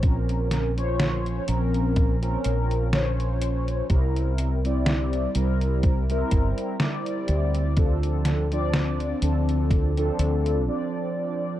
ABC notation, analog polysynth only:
X:1
M:4/4
L:1/16
Q:"Swing 16ths" 1/4=62
K:Bblyd
V:1 name="Analog polysynth"
[F,C_DB]3 [F,Dc_d]3 [F,CDB]3 [F,CDB]3 [F,Dcd]4 | [G,CEB]3 [G,CEd]3 [G,CEB]3 [G,CEB]3 [G,CEd]4 | [F,CDA]3 [F,CDd]3 [F,CDA]3 [F,CDA]3 [F,CDd]4 |]